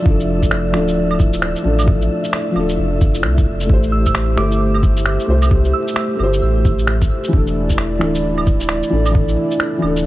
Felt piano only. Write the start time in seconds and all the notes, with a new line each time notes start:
0.02 F3 D4
0.10 A4
0.72 F3 D4
0.76 A4
1.62 F3 D4
1.67 A4
1.83 F3 D4
1.91 A4
2.51 F3
2.56 D4 A4
3.65 A3
3.69 G4 C5
4.35 A3 G4
4.39 C5
5.26 A3 G4 C5
5.46 A3
5.50 G4
5.54 C5
6.15 A3
6.20 G4 C5
7.28 E3
7.32 D4
7.37 A4
7.99 E3 D4 A4
8.90 E3 D4 A4
9.11 E3 D4
9.18 A4
9.78 E3
9.83 D4 A4